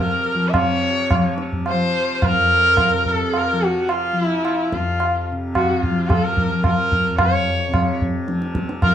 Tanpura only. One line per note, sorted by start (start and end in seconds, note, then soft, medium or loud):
0.00 2.33 F2 medium
0.00 0.53 C3 medium
0.00 0.35 F3 medium
0.35 1.12 F3 medium
0.53 2.94 C3 medium
1.12 1.73 F3 medium
1.73 3.52 F3 medium
2.34 4.73 F2 medium
2.94 5.32 C3 medium
3.52 4.12 F3 medium
4.12 5.91 F3 medium
4.73 7.09 F2 medium
5.32 7.68 C3 medium
5.91 6.50 F3 medium
6.50 8.27 F3 medium
7.10 8.95 F2 medium
7.68 8.95 C3 medium
8.27 8.85 F3 medium
8.85 8.95 F3 medium